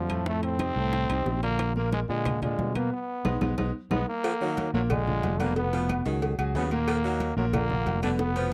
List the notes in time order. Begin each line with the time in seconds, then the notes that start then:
Already playing: F2 F3
0.09 A2 A3 A4, high bongo, high conga, high timbale, claves
0.26 A2 A3 A4, high bongo, high conga
0.43 C4, high bongo, high conga, high timbale
0.59 C3 C4 D#4, high bongo, high conga, high timbale, low timbale, claves
0.76 C2 A2 A3 A4, high conga
0.93 high bongo, high conga, high timbale
1.09 C2 C3 C4 D#4, high bongo, high conga, high timbale, claves
1.26 A#1, high bongo, low bongo, high conga, low timbale
1.43 D3 A#3 D4 F4, high bongo, high timbale
1.59 high bongo, high conga, high timbale, claves
1.76 A#2 A#3 A#4, high bongo, high conga
1.92 G#3, high bongo, high conga, high timbale, low timbale
2.09 A#2 D3 G#3 D4 F4, high conga
2.25 high bongo, high conga, low conga, high timbale, claves
2.42 D3 G#3 D4 F4, high bongo, high conga, low conga, high timbale
2.59 B2, high bongo, low bongo, high conga, low timbale
2.75 B2 A#3 B3 B4, high bongo, high conga, high timbale, claves
2.93 B3
3.25 B1 G#3 B3 D#4, low bongo, high conga, high timbale, claves
3.41 B1 G#3 B3 D#4, low bongo, high conga, high timbale, claves
3.58 B1 G#3 B3 D#4, low bongo, high conga, high timbale, claves
3.91 B1 G#3 B3 D#4, low bongo, high conga, high timbale, claves
4.08 A#3
4.24 F3, cowbell, high conga, low agogo, claves
4.41 D#3 F#3 D#4 F#4, high conga
4.57 cowbell, high conga, low timbale, low agogo
4.74 A#1 A#2 F#3 A#3 A#4, high conga
4.90 D3 G#3 D4 F4, cowbell, high conga, low conga, low agogo, claves
5.07 D3 D4 F4, high conga, low conga
5.23 F1, cowbell, high conga, low timbale, low agogo
5.40 B2 D3 A#3 B3 B4, cowbell, high conga, low agogo, claves
5.56 B2 B3 B4, cowbell
5.73 B2 F3 B3 B4, cowbell, high conga, low agogo
5.89 cowbell, high conga, low timbale, low agogo, claves
6.06 C#2 D#3 F#3 F#4 G#4, cowbell, high conga
6.22 cowbell, high conga, low agogo
6.39 C#2 F#3 F#4 G#4, high conga, low agogo, claves
6.55 D#2 C#3 F#3 B3 F#4 G#4, cowbell, high conga, low timbale
6.71 A#2 A#3 A#4, low agogo
6.88 F3, cowbell, high conga, low agogo, claves
7.04 D#3 F#3 D#4 F#4, high conga
7.20 cowbell, high conga, low timbale, low agogo
7.37 A#1 A#2 F#3 A#3 A#4, high conga
7.53 D3 A#3 D4 F4, cowbell, high conga, low conga, low agogo, claves
7.70 D3 D4 F4, high conga, low conga
7.86 F1, cowbell, high conga, low timbale, low agogo
8.02 B2 D3 B3 D4 B4, cowbell, high conga, low agogo, claves
8.19 B2 B3 B4, cowbell, high bongo, high conga
8.35 B2 F3 B3 B4, cowbell, high conga, low agogo